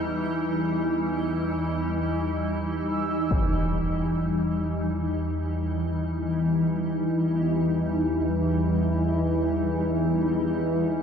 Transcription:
Already playing: E2 E3 G3 D#4 E6
3.31 E2 E3, impact

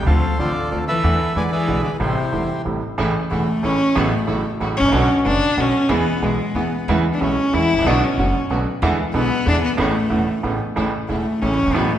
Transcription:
0.02 C#2
0.06 D2 D3 F3 A3 C4 F4 A4 C5 F5
0.39 A1 A2 D3 A3 C4 F4 A4 D5
0.71 D2 D3 A3 C4 F4 D5
0.88 E3 A4 B4 E5
1.03 E2 D3 E3 A3 B3 E4
1.35 E2 D3 E3 G#3 B3 E4 B4 D5 G#5
1.52 E3 G#4 B4 E5
1.68 B1 B2 D3 G#3 B3 E4
1.83 D3 D5
1.99 A1 A2 C3 G3 A3 E4 G4 C5
2.32 E1 E2 C3 G3 A3 E4
2.65 A1 A2 C3 G3 A3 E4
2.98 A1 A2 C#3 E3 A3 C#4 E4
3.30 E1 E2 C#3 E3 A3 C#4 E4
3.63 A1 A2 C#3 E3 A3 C#4 E4
3.95 A1 A2 C#3 F#3 A3 B3 E4 F#4
4.13 A3
4.27 A1 A2 C#3 F#3 A3 E4 F#4
4.60 A1 A2 C#3 F#3 A3 E4 F#4
4.77 G#1 C#4
4.84 A1 A#1
4.88 A#1 B1 B2 D3 B3 C#4 F#4
4.93 B3 C#4 D4
5.25 F#1 F#2 D3 B3 C#4 D4 F#4
5.57 B1 B2 D3 B3 C#4 D4 F#4
5.89 E2 E3 G#3 B3 E4 G#4
6.22 B1 B2 E3 G#3 B3 E4 G#4
6.55 E2 E3 G#3 B3 E4 G#4
6.88 E2 C#3 E3 G#3 B3 C#4 E4
7.14 D4
7.20 B1 B2 C#3 G#3 B3 C#4 E4
7.53 E2 C#3 E3 G#3 B3 C#4 E4
7.73 G#1
7.77 A1
7.81 A#1 B1
7.86 B1 B2 D3 F#3 B3 D4 F#4
8.04 C#4
8.18 F#1 F#2 D3 F#3 B3 D4 F#4
8.50 B1 B2 D3 F#3 B3 D4 F#4
8.82 E2 D3 E3 G#3 B3 D4 E4
9.14 B1 B2 D3 G#3 B3 D4 E4
9.46 E2 D3 E3 G#3 B3 D4 E4
9.62 B3
9.77 A1 A2 C#3 A3 B3 C#4 E4
10.10 E1 E2 C#3 A3 B3 C#4 E4
10.43 A1 A2 C#3 A3 B3 C#4 E4
10.76 A1 A2 C#3 E3 A3 C#4 E4
11.09 E1 E2 C#3 E3 A3 C#4 E4
11.42 A1 A2 C#3 E3 A3 C#4 E4
11.57 C#4
11.62 F#1
11.67 G1 G#1
11.71 G#1 A1 A2 C#3 F#3 A3 B3 E4 F#4
11.76 A1
11.91 A3

